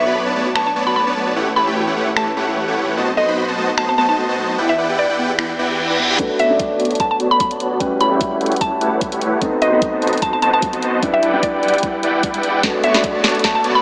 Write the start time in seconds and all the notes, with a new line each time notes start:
Already playing: B1 E5
0.06 B3 F#4 B4 C#5 D5 B5
0.15 A4
0.26 B3 D4 B4 C#5 D5 A5
0.35 A3 B3 B4 C#5 D5 A5
0.46 F#4
0.56 A3 B3 B4 C#5 D5 A5 C#6, finger snap
0.66 D4 A5
0.76 A3 B3 B4 C#5 D5 A5
0.87 B3 F#4 B4 C#5 D5 A5 B5
0.96 A3 B5
1.07 B3 D4 B4 C#5 D5 A5
1.16 A3 B3 B4 C#5 D5 A5
1.27 F#4
1.36 A1 A3 E4 G4 B4 C#5 F#5
1.47 C#4
1.56 A3 E4 G4 B4 C#5 A5 B5
1.67 A3 E4 G4 B4 C#5 G5
1.76 F#4
1.87 A3 C#4 E4 G4 B4 C#5 F#5
1.97 A3 E4 G4 B4 C#5 F#5
2.08 E4
2.17 A3 E4 G4 B4 C#5 A5, finger snap
2.28 C#4
2.37 A3 E4 G4 B4 C#5 F#5
2.48 A3 E4 G4 B4 C#5 F#5
2.57 A3
2.68 A3 C#4 E4 G4 B4 C#5 F#5
2.77 A3 E4 G4 B4 C#5 F#5
2.88 E4
2.97 B1 A3 B3 F#4 C5 D#5 A5
3.08 C4
3.17 B3 F#4 A4 C5 D#5 C6
3.28 B3 D#4 F#4 C5 D#5 B5
3.38 F#4
3.48 B3 C4 F#4 C5 D#5 A5
3.58 A3 B3 F#4 C5 D#5 A5
3.69 D#4
3.78 A3 B3 F#4 C5 D#5 A5 C6, finger snap
3.89 C4 A5
3.98 A3 B3 F#4 C5 D#5 A5
4.09 B3 D#4 F#4 C5 D#5 A5
4.18 A3
4.29 B3 C4 F#4 C5 D#5 A5
4.38 A3 B3 F#4 C5 D#5 A5
4.49 D#4
4.58 E2 B3 E4 B4 D5 F#5 G5
4.69 E4 E5
4.78 E4 B4 D5 F#5 G5
4.89 E4 G4 B4 D5 F#5 G5
4.99 B4 D5
5.09 E4 B4 D5 F#5 G5
5.19 B3 E4 B4 D5 F#5 G5
5.30 G4
5.39 B3 E4 B4 D5 F#5 G5, finger snap, reverse cymbal
5.50 E4
5.59 B3 E4 B4 D5 F#5 G5
5.70 E4 G4 B4 D5 F#5 G5
5.79 B3
5.90 E4 B4 D5 F#5 G5
5.99 B3 E4 B4 D5 F#5 G5
6.10 G4
6.18 A3 B3 D4 F#4 B4 C#5 D5 A5, kick, closed hi-hat, riser
6.39 B3 F#4 C#5 D5 E5 C#6, closed hi-hat
6.48 A3 B3 D4 F#4 C#5 D5 B5
6.52 D5
6.59 kick, closed hi-hat
6.71 B3 F#4 C#5 D5 A5
6.80 B3 F#4 C#5 D5 A5, closed hi-hat
6.85 closed hi-hat
6.91 closed hi-hat
6.95 closed hi-hat
7.00 B3 F#4 C#5 D5 A5 C#6, kick, closed hi-hat
7.11 A5
7.20 B3 F#4 C#5 D5 A5, closed hi-hat
7.31 B3 F#4 C#5 D5 A5 B5
7.40 B5, kick, closed hi-hat
7.51 B3 F#4 C#5 D5 A5, closed hi-hat
7.60 B3 F#4 C#5 D5 A5, closed hi-hat
7.79 G3 A3 C#4 E4 F#4 G4 B4 C#5 F#5, kick, closed hi-hat
8.01 A3 E4 G4 B4 C#5 A5 B5, closed hi-hat
8.09 G3 A3 C#4 E4 F#4 G4 B4 C#5 G5
8.13 E5
8.21 kick, closed hi-hat
8.32 A3 E4 G4 B4 C#5 F#5
8.41 A3 E4 G4 B4 C#5 F#5, closed hi-hat
8.46 closed hi-hat
8.52 closed hi-hat
8.56 closed hi-hat
8.61 A3 E4 G4 B4 C#5 A5, kick, closed hi-hat
8.81 A3 E4 G4 B4 C#5 F#5, closed hi-hat
8.92 A3 E4 G4 B4 C#5 F#5
9.01 kick, closed hi-hat
9.12 A3 E4 G4 B4 C#5 F#5, closed hi-hat
9.21 A3 E4 G4 B4 C#5 F#5, closed hi-hat
9.40 A3 B3 C4 D#4 F#4 B4 C5 D#5 A5, kick, closed hi-hat
9.62 B3 F#4 C5 D#5 C6, closed hi-hat
9.71 A3 B3 C4 D#4 F#4 C5 D#5 B5
9.75 D#5
9.82 kick, closed hi-hat
9.93 B3 F#4 C5 D#5 A5
10.02 B3 F#4 C5 D#5 A5, closed hi-hat
10.07 closed hi-hat
10.13 closed hi-hat
10.18 closed hi-hat
10.22 B3 F#4 C5 D#5 A5 C6, kick, closed hi-hat
10.33 A5
10.42 B3 F#4 C5 D#5 A5, closed hi-hat
10.53 B3 F#4 C5 D#5 A5
10.62 kick, closed hi-hat
10.73 B3 F#4 C5 D#5 A5, closed hi-hat
10.82 B3 F#4 C5 D#5 A5, closed hi-hat
11.02 G3 D4 E4 B4 D5 F#5 G5, kick, closed hi-hat
11.14 E5
11.23 E4 B4 D5 F#5 G5, closed hi-hat
11.32 G3 D4 E4 B4 D5 F#5 G5
11.36 D5
11.43 D5, kick, closed hi-hat
11.54 E4 B4 D5 F#5 G5
11.63 E4 B4 D5 F#5 G5, closed hi-hat
11.68 closed hi-hat
11.74 closed hi-hat
11.78 closed hi-hat
11.83 E4 B4 D5 F#5 G5, kick, closed hi-hat
12.03 E4 B4 D5 F#5 G5, closed hi-hat
12.14 E4 B4 D5 F#5 G5
12.23 kick, closed hi-hat
12.34 E4 B4 D5 F#5 G5, closed hi-hat
12.43 E4 B4 D5 F#5 G5, closed hi-hat
12.63 A3 B3 D4 F#4 B4 C#5 D5 A5, kick, snare, closed hi-hat
12.84 B3 F#4 C#5 D5 E5 C#6, closed hi-hat
12.93 A3 B3 D4 F#4 C#5 D5 B5, snare
12.97 D5
13.04 kick, closed hi-hat
13.15 B3 F#4 C#5 D5 A5
13.24 B3 F#4 C#5 D5 A5, snare, closed hi-hat
13.29 closed hi-hat
13.35 closed hi-hat
13.39 closed hi-hat
13.44 B3 F#4 C#5 D5 A5 C#6, kick, snare, closed hi-hat
13.55 A5
13.64 B3 F#4 C#5 D5 A5, closed hi-hat
13.75 B3 F#4 C#5 D5 A5 B5